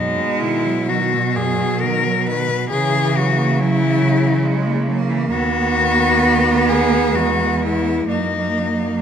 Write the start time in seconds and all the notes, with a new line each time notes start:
Already playing: F#2 B2 G#3 D#4
0.18 B2
0.40 D#3 E4
0.65 F#3
0.88 D#3 F#3 F#4
1.13 B2
1.36 F#2 G#4
1.59 B2
1.80 D#3 A#4
2.05 F#3
2.26 D#3 B4
2.48 B2
2.69 C#3 E3 G#4
2.92 E3
3.15 F#3 F#4
3.37 A#3
3.58 F#3 E4
3.81 E3
4.02 C#3
4.24 E3
4.43 F#3 G#3
4.66 A#3
4.86 F#3 A#3
5.09 E3
5.30 D#2 B3 F#4
6.68 G#4
7.13 E2 G#3 F#4
7.62 E4
8.07 F#2 A#3 D#4